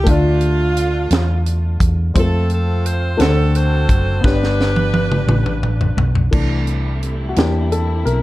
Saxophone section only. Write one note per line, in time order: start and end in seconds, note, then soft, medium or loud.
0.09 1.43 A3 medium
0.09 1.43 D4 medium
0.09 1.47 F4 medium
2.18 3.17 C4 medium
2.18 3.17 F4 medium
2.18 2.50 A4 medium
2.53 2.84 A4 medium
2.87 3.21 C5 medium
3.21 4.21 C4 medium
3.21 3.55 F#4 medium
3.21 3.55 A4 medium
3.56 4.21 F#4 medium
3.56 4.21 A4 medium
3.56 4.25 C5 medium
4.25 5.60 D4 medium
4.25 5.60 G4 medium
4.25 5.64 B4 medium